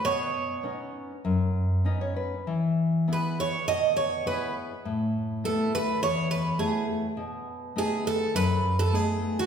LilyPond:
<<
  \new Staff \with { instrumentName = "Twelve-string acoustic guitar" } { \time 4/4 \key b \mixolydian \tempo 4 = 102 cis''4. r2 r8 | r4 b'8 cis''8 dis''8 cis''8 b'8 r8 | r4 a'8 b'8 cis''8 b'8 gis'8 r8 | r4 gis'8 a'8 b'8. a'16 gis'8. fis'16 | }
  \new Staff \with { instrumentName = "Nylon-string guitar" } { \time 4/4 \key b \mixolydian << { r2. dis''16 cis''16 b'8 | r1 | r1 | r1 | } \\ { b,4 <b cis' dis'>4 fis,4 <b cis' dis'>4 | e4 <b e' gis'>4 b,4 <b e' gis'>4 | a,4 <a b e'>4 e,4 <a b e'>4 | b,4 <a b dis'>4 fis,4 <a b dis'>4 | } >> }
>>